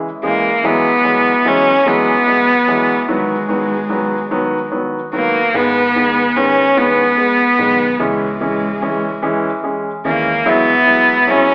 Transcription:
0.23 0.49 C#3 medium
0.23 0.49 E3 medium
0.23 0.49 G#3 medium
0.23 0.67 A#3 medium
0.64 0.90 E3 medium
0.64 0.90 F#3 medium
0.64 0.90 G#3 medium
0.64 1.49 B3 medium
1.04 1.30 E3 medium
1.04 1.30 F#3 medium
1.04 1.30 G#3 medium
1.45 1.71 E3 medium
1.45 1.71 F#3 medium
1.45 1.71 G#3 medium
1.45 1.89 C#4 medium
1.85 2.12 E3 medium
1.85 2.12 F#3 medium
1.85 2.12 G#3 medium
1.85 3.09 B3 medium
2.27 2.53 F#3 soft
2.27 2.53 G#3 medium
2.68 2.94 E3 medium
2.68 2.94 F#3 medium
2.68 2.94 G#3 medium
3.08 3.35 D#3 medium
3.08 3.35 F#3 medium
3.08 4.69 G#3 medium
3.08 3.35 B3 medium
3.49 3.75 D#3 medium
3.49 3.75 F#3 soft
3.49 3.76 B3 medium
3.89 4.16 D#3 medium
3.89 4.16 F#3 medium
3.89 4.16 B3 medium
4.31 4.57 D#3 medium
4.31 4.57 F#3 medium
4.31 4.58 B3 medium
4.71 4.98 D#3 medium
4.71 4.98 F#3 soft
4.71 4.98 B3 medium
5.13 5.39 D#3 medium
5.13 5.39 F#3 medium
5.13 5.57 A#3 medium
5.13 5.40 B3 medium
5.54 7.55 G#1 medium
5.54 5.80 D#3 medium
5.54 5.80 G#3 medium
5.54 5.80 B3 medium
5.54 6.38 B3 medium
5.95 6.21 D#3 medium
5.95 6.22 G#3 medium
5.95 6.22 B3 medium
6.36 6.62 D#3 medium
6.36 6.62 G#3 medium
6.36 6.63 B3 medium
6.36 6.80 C#4 medium
6.76 7.03 D#3 medium
6.76 7.03 G#3 medium
6.76 7.03 B3 medium
6.76 8.04 B3 medium
7.17 7.44 G#3 soft
7.17 7.44 B3 medium
7.59 7.98 B1 medium
7.59 7.85 D#3 medium
7.59 7.85 G#3 medium
7.59 7.85 B3 medium
7.99 10.01 C#2 medium
7.99 8.26 E3 medium
7.99 8.26 G#3 medium
7.99 9.65 G#3 medium
7.99 8.26 C#4 medium
8.40 8.67 E3 medium
8.40 8.67 G#3 medium
8.40 8.67 C#4 medium
8.81 9.08 E3 medium
8.81 9.08 G#3 medium
8.81 9.08 C#4 medium
9.22 9.49 E3 medium
9.22 9.49 G#3 medium
9.22 9.49 C#4 medium
9.63 9.90 G#3 medium
9.63 9.90 C#4 medium
10.05 10.44 D#2 medium
10.05 10.31 E3 medium
10.05 10.31 G#3 medium
10.05 10.50 A#3 medium
10.05 10.31 C#4 medium
10.46 11.54 E2 medium
10.46 10.72 F#3 medium
10.46 10.72 G#3 medium
10.46 11.32 B3 medium
10.46 10.72 E4 medium
10.86 11.13 F#3 medium
10.86 11.13 G#3 medium
10.86 11.13 E4 medium
11.27 11.54 F#3 medium
11.27 11.54 G#3 medium
11.27 11.54 C#4 medium
11.27 11.54 E4 medium

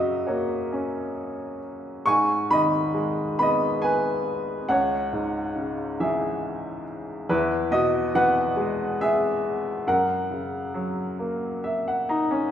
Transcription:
0.00 2.02 F#2 medium
0.00 1.57 C#3 soft
0.00 0.24 F#4 medium
0.00 2.07 A#4 medium
0.00 0.27 D#5 medium
0.00 2.07 E5 medium
0.27 2.02 A#3 soft
0.27 1.57 F#4 soft
0.27 1.57 C#5 soft
0.72 2.02 C#4 soft
2.06 4.66 G#2 soft
2.06 2.48 G#5 medium
2.06 2.51 C#6 medium
2.51 4.23 D#3 soft
2.51 3.36 D#5 medium
2.51 3.37 B5 medium
2.94 4.66 G#3 soft
3.39 4.66 B3 soft
3.39 3.81 D#5 medium
3.39 3.80 B5 medium
3.82 4.67 B4 medium
3.82 4.72 G#5 medium
4.69 7.25 C#2 medium
4.69 5.96 C#5 medium
4.69 6.03 F#5 medium
5.13 6.82 G#2 soft
5.56 7.25 C#3 soft
6.00 7.26 E3 medium
6.00 6.83 G#4 soft
6.00 6.83 E5 medium
7.29 9.83 E2 medium
7.29 7.69 E4 medium
7.29 7.69 B4 medium
7.71 9.39 B2 soft
7.71 8.12 F#4 medium
7.71 8.16 D#5 medium
8.15 9.83 E3 soft
8.15 8.97 B4 medium
8.15 9.03 F#5 medium
8.57 9.83 G#3 soft
9.01 9.83 G#4 medium
9.01 9.90 E5 medium
9.87 12.50 F#2 medium
9.87 11.60 A#4 medium
9.87 11.60 F#5 medium
10.31 12.05 C#3 soft
10.74 12.50 F#3 soft
11.19 12.50 A#3 soft
11.64 11.85 E5 medium
11.88 12.08 F#5 medium
12.09 12.30 D#4 medium
12.09 12.51 A#5 soft
12.31 12.51 C#4 medium

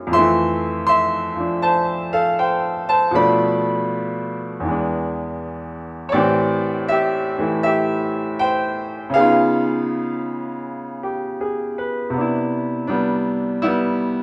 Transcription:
0.00 0.11 F#2 soft
0.00 0.11 E3 soft
0.00 0.12 G#3 soft
0.00 0.13 A#3 soft
0.00 0.13 D#4 soft
0.07 3.10 F2 medium
0.07 1.35 F3 medium
0.13 3.13 A3 medium
0.13 0.84 E5 medium
0.13 0.85 C6 medium
0.18 3.16 E3 medium
0.87 1.59 E5 medium
0.87 1.58 C6 medium
1.36 3.12 F3 soft
1.36 3.14 D4 soft
1.62 2.09 C5 medium
1.62 2.13 A5 medium
2.13 2.36 A4 medium
2.13 2.38 F5 medium
2.39 2.50 C5 medium
2.39 2.50 G5 medium
2.89 3.12 C5 medium
2.89 3.14 A5 medium
3.11 4.62 B2 medium
3.11 4.63 F3 medium
3.11 4.64 A3 medium
3.15 4.64 D4 medium
3.15 4.35 D5 medium
3.15 4.35 B5 medium
4.60 6.12 E2 soft
4.60 6.13 E3 soft
4.68 6.15 G#3 soft
4.68 6.17 D4 medium
6.09 9.13 A2 medium
6.09 6.13 C#5 medium
6.09 6.84 D5 medium
6.14 7.37 E3 medium
6.14 9.15 C4 medium
6.14 6.16 G4 medium
6.14 6.90 G4 medium
6.88 7.61 G4 medium
6.88 7.62 E5 medium
7.38 9.13 E3 soft
7.38 9.14 A3 soft
7.38 9.15 E4 medium
7.63 8.36 G4 medium
7.63 8.34 E5 medium
8.39 9.11 C5 medium
8.39 9.16 G5 medium
9.10 12.12 C#3 medium
9.10 12.12 B3 medium
9.14 12.15 D#4 medium
9.14 11.36 G#4 medium
9.14 11.35 F5 medium
9.20 12.17 F4 medium
11.03 11.55 G4 soft
11.41 11.98 G#4 soft
11.78 12.30 B4 soft
12.10 14.23 C3 soft
12.10 12.88 B3 soft
12.17 12.86 D4 soft
12.17 13.61 E4 medium
12.87 13.62 G3 medium
12.87 13.63 B3 medium
12.87 13.59 D4 medium
13.62 14.23 G3 medium
13.62 14.23 B3 medium
13.62 13.66 E4 medium
13.67 14.23 E4 soft

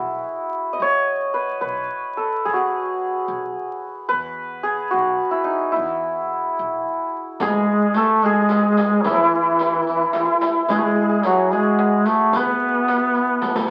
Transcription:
0.00 0.21 B1 medium
0.00 0.79 E4 medium
0.00 2.11 F#4 medium
0.00 1.37 G#4 medium
0.00 0.24 B4 loud
0.73 3.11 D#5 medium
0.80 1.51 E2 medium
0.80 3.37 C#5 loud
1.34 1.61 B4 medium
1.61 1.86 B1 medium
1.61 4.08 B4 medium
2.17 2.51 A4 medium
2.45 3.17 E2 medium
2.45 2.56 G#4 medium
2.53 4.90 F#4 medium
2.53 4.63 G#4 medium
3.28 3.52 B1 loud
4.09 4.82 E2 loud
4.09 6.82 B4 loud
4.63 7.42 G#4 medium
4.91 5.17 B1 medium
4.91 8.15 F#4 medium
5.31 5.50 E4 medium
5.44 5.78 D#4 medium
5.72 9.06 E4 medium
5.76 6.47 E2 loud
6.59 6.83 B1 loud
7.40 8.35 E2 medium
7.40 7.96 G#3 medium
7.40 8.03 G#4 loud
7.40 riq medium
7.40 tombak dum medium
7.94 8.24 A3 medium
7.94 8.31 A4 medium
7.94 riq medium
7.94 tombak tek medium
8.22 9.04 G#3 medium
8.22 8.33 G#4 loud
8.22 riq soft
8.34 8.41 G#4 medium
8.42 8.49 G#4 medium
8.49 8.56 G#4 medium
8.49 riq medium
8.49 tombak tek medium
8.56 8.63 G#4 medium
8.64 8.72 G#4 medium
8.72 8.80 G#4 medium
8.77 8.85 G#4 medium
8.77 riq soft
8.77 tombak tek medium
8.86 8.91 G#4 medium
8.91 10.70 G#4 medium
9.02 9.29 E2 medium
9.02 9.13 E3 medium
9.02 9.13 E4 medium
9.02 riq medium
9.02 tombak dum medium
9.11 9.20 F#3 medium
9.11 9.23 E4 medium
9.18 10.42 E3 medium
9.23 9.29 E4 medium
9.29 9.34 E4 soft
9.34 9.42 E4 medium
9.43 9.52 E4 soft
9.52 9.59 E4 medium
9.59 9.65 E4 soft
9.59 riq soft
9.59 tombak tek medium
9.65 9.73 E4 soft
9.74 9.82 E4 soft
9.82 9.89 E4 medium
9.87 9.96 E4 soft
9.87 riq soft
9.97 10.03 E4 medium
10.04 10.12 E4 medium
10.13 10.19 E4 medium
10.13 riq medium
10.13 tombak tek medium
10.20 10.25 E4 medium
10.25 13.70 E4 medium
10.41 riq soft
10.41 tombak tek medium
10.68 11.63 E2 loud
10.68 10.78 G#3 medium
10.68 10.79 G#4 medium
10.68 riq medium
10.68 tombak dum medium
10.76 10.85 A3 medium
10.76 10.86 G#4 medium
10.83 11.26 G#3 medium
10.83 10.95 G#4 medium
10.95 11.01 G#4 medium
11.02 11.09 G#4 medium
11.09 11.52 G#4 medium
11.23 11.54 F#3 medium
11.23 13.70 F#4 medium
11.23 riq soft
11.23 tombak tek medium
11.51 12.08 G#3 medium
11.51 13.70 G#4 medium
11.51 riq soft
11.79 tombak tek medium
12.06 12.37 A3 medium
12.06 riq soft
12.06 tombak tek medium
12.33 12.57 E2 loud
12.33 13.70 B3 medium
12.33 13.70 B4 loud
12.33 riq medium
12.33 tombak dum medium
12.88 riq soft
12.88 tombak tek medium
13.15 riq soft
13.42 riq medium
13.42 tombak tek medium
13.56 riq medium
13.56 tombak ka medium

